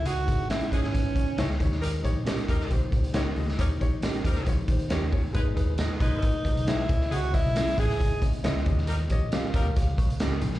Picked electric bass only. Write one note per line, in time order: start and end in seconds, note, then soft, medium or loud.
0.06 0.24 C#2 medium
0.28 0.56 G#1 medium
0.72 0.81 F#1 medium
0.83 0.92 G#1 medium
0.95 1.13 G#1 medium
1.16 1.35 C#3 medium
1.39 1.57 C#2 medium
1.61 1.98 D#2 medium
2.04 2.32 A#1 medium
2.48 2.58 D#2 medium
2.59 2.69 C#2 medium
2.71 2.89 A#1 medium
2.93 3.30 C#2 medium
3.36 3.55 D2 medium
3.59 3.78 D#2 medium
3.81 4.09 A#1 medium
4.24 4.34 D#2 medium
4.37 4.46 C#2 medium
4.47 4.66 A#1 medium
4.68 4.87 D#3 medium
4.91 5.10 D#2 medium
5.12 5.31 G1 medium
5.35 5.54 G#1 medium
5.57 5.85 D#2 medium
6.01 6.10 B1 medium
6.12 6.31 G#1 medium
6.45 6.54 C#2 medium
6.56 6.84 B1 medium
6.90 7.08 C#2 medium
7.12 7.40 C#2 medium
7.45 7.64 B1 medium
7.78 7.87 A1 medium
7.89 7.99 C#2 medium
8.00 8.19 G#1 loud
8.22 8.41 C#3 medium
8.43 8.62 C#2 medium
8.66 9.04 D#2 loud
9.10 9.38 A#1 medium
9.54 9.64 D#2 medium
9.65 9.84 C#2 medium
9.98 10.08 A#1 medium
10.09 10.37 C#2 medium
10.42 10.59 A#1 medium